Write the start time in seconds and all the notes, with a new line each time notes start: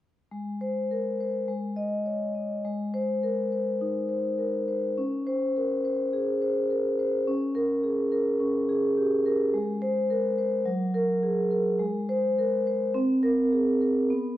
0.32 G#3
0.61 C5
0.91 A#4
1.21 C5
1.48 G#3
1.76 D#5
2.06 C#5
2.35 D#5
2.65 G#3
2.94 C5
3.23 A#4
3.52 C5
3.81 D#4
4.09 C5
4.39 A#4
4.68 C5
4.98 C#4
5.27 C5
5.57 A#4
5.85 C5
6.13 G#4
6.42 C5
6.70 A#4
6.99 C5
7.27 C#4
7.55 A#4
7.84 G#4
8.12 A#4
8.40 C#4
8.69 G#4
8.97 G4
9.26 A#4
9.54 G#3
9.82 C5
10.10 A#4
10.38 C5
10.65 F#3
10.94 A#4
11.23 G#4
11.51 A#4
11.79 G#3
12.09 C5
12.38 A#4
12.67 C5
12.94 C4
13.23 A#4
13.52 G#4
13.81 A#4
14.10 B3